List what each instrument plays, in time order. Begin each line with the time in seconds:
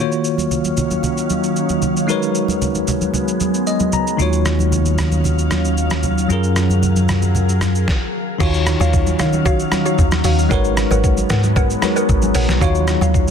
Already playing: tine electric piano D#3 A#3
0.00 ambient pad D#3 F#3 C#4 F5, tine electric piano F4 F#4 C#5
0.12 shaker
0.24 shaker
0.38 high conga, shaker
0.51 low conga, shaker
0.64 high conga, shaker
0.77 low conga, shaker
0.91 high conga, shaker
1.03 low conga, shaker
1.17 shaker
1.30 high conga, shaker
1.44 shaker
1.56 shaker
1.69 high conga, shaker
1.82 low conga, shaker
1.97 shaker
2.07 tine electric piano G#3 D#4 F#4 A#4 B4, ambient pad G#3 B3, shaker
2.11 tine electric piano C#5
2.22 shaker
2.35 shaker
2.48 high conga, shaker
2.62 low conga, shaker
2.75 high conga, shaker
2.88 low conga, shaker
3.01 high conga, shaker
3.14 low conga, shaker
3.28 shaker
3.40 high conga, shaker
3.54 shaker
3.67 tine electric piano D#5, shaker
3.80 high conga, shaker
3.92 tine electric piano A#5, low conga, shaker
4.07 shaker
4.17 fingered electric bass D#2, tine electric piano D#3 D#4 F4 F#4, ambient pad D#3 C#4 F5, shaker
4.22 tine electric piano C#5
4.33 shaker
4.45 cross-stick, shaker
4.59 high conga, shaker
4.72 low conga, shaker
4.86 high conga, shaker
4.98 cross-stick, low conga, shaker
5.12 high conga, shaker
5.24 low conga, shaker
5.39 shaker
5.51 cross-stick, high conga, shaker
5.65 shaker
5.77 shaker
5.90 cross-stick, high conga, shaker
6.03 low conga, shaker
6.18 shaker
6.28 fingered electric bass F#2, tine electric piano F#3 C#4 F4 G#4, ambient pad F#3 G#4 A#4, shaker
6.33 tine electric piano A#4
6.43 shaker
6.56 cross-stick, shaker
6.70 high conga, shaker
6.83 low conga, shaker
6.96 high conga, shaker
7.09 cross-stick, low conga, shaker
7.22 high conga, shaker
7.35 low conga, shaker
7.49 shaker
7.61 cross-stick, high conga, shaker
7.75 shaker
7.88 kick, snare
8.38 log drum bass D#2, tine electric piano D#3 D#4 F4 F#4, ambient pad D#3 F#3 C#4 F5, synth pluck F#4 C#5 F5, kick, crash, shaker
8.43 tine electric piano C#5
8.54 shaker
8.66 cross-stick, shaker
8.80 log drum bass D#2, synth pluck F#4 C#5 F5, high conga, shaker
8.93 kick, shaker
9.07 high conga, shaker
9.19 log drum bass D#3, synth pluck F#4 C#5 F5, cross-stick, low conga, shaker
9.33 high conga, shaker
9.45 synth pluck F#4 C#5 F5, kick, low conga, shaker
9.59 shaker
9.72 cross-stick, high conga, shaker
9.86 synth pluck F#4 C#5 F5, shaker
9.98 log drum bass D#2, kick, shaker
10.11 cross-stick, high conga, shaker
10.24 log drum bass D#2, synth pluck F#4 C#5 F5, open hi-hat, low conga, shaker
10.39 shaker
10.49 log drum bass G#1, ambient pad F#3 G#3 B3, tine electric piano G#3 D#4 F#4 A#4 B4, synth pluck A#4 B4 C#5 F#5, kick, shaker
10.53 tine electric piano C#5
10.64 shaker
10.77 cross-stick, shaker
10.91 log drum bass G#1, synth pluck A#4 B4 C#5 F#5, high conga, shaker
11.04 kick, shaker
11.17 high conga, shaker
11.30 log drum bass G#2, synth pluck A#4 B4 C#5 F#5, cross-stick, snare, low conga, shaker
11.43 high conga, shaker
11.56 synth pluck A#4 B4 C#5 F#5, kick, low conga, shaker
11.70 shaker
11.82 tine electric piano G#3 D#4 F#4 A#4 B4 C#5, cross-stick, high conga, shaker
11.96 synth pluck A#4 B4 C#5 F#5, shaker
12.09 log drum bass G#1, kick, shaker
12.22 high conga, shaker
12.35 log drum bass A#1, synth pluck A#4 B4 C#5 F#5, open hi-hat, low conga, shaker
12.49 log drum bass B1, snare, shaker
12.59 log drum bass D#2, tine electric piano D#3 D#4 F4 F#4, ambient pad D#3 C#4 F5, synth pluck F#4 C#5 F5, kick, shaker
12.64 tine electric piano C#5
12.75 shaker
12.87 cross-stick, shaker
13.01 log drum bass D#2, synth pluck F#4 C#5 F5, high conga, shaker
13.14 kick, shaker
13.28 shaker